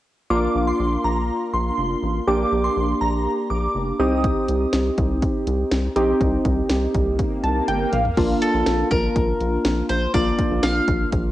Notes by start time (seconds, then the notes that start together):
0.31 A#1 A#3 D4 F4 D6
0.55 A#1
0.68 C6
0.80 A#1
1.04 A#1 A#5
1.54 A#1 C6
1.78 F1
2.03 A1
2.27 A#1 A#3 D4 G4 D6
2.52 A#1
2.64 C6
2.77 A#1
3.01 A#1 A#5
3.50 A#1 D6
3.75 F1
3.99 C2 C4 D#4 G4 D#6
4.24 kick, closed hi-hat
4.48 C2, closed hi-hat
4.73 C2, snare, closed hi-hat
4.98 C2, kick, closed hi-hat
5.22 kick, closed hi-hat
5.47 C2, closed hi-hat
5.72 C2, snare, closed hi-hat
5.96 A#1 C4 D#4 G4, closed hi-hat
6.21 C2, kick, closed hi-hat, swell
6.45 C2, kick, closed hi-hat
6.70 C2, snare, closed hi-hat
6.95 C2, kick, closed hi-hat
7.19 kick, closed hi-hat
7.44 C2 A5, closed hi-hat
7.68 G1 G5, closed hi-hat, high tom
7.93 A#1 F5, closed hi-hat, mid tom
8.05 floor tom
8.17 A#1 A#3 D4 F4, kick, closed hi-hat, crash
8.42 A4, closed hi-hat
8.54 A#1
8.66 A#1, snare, closed hi-hat
8.91 A#1 A#4, kick, closed hi-hat
9.16 A#1, kick, closed hi-hat
9.40 A#1, closed hi-hat
9.65 A#1, snare, closed hi-hat
9.89 A#1 C5, closed hi-hat
10.14 A#1 A#3 D4 F4 D5, kick, closed hi-hat
10.38 kick, closed hi-hat
10.51 A#1
10.63 A#1 F5, snare, closed hi-hat
10.88 A#1, kick, closed hi-hat
11.12 A#1, kick, closed hi-hat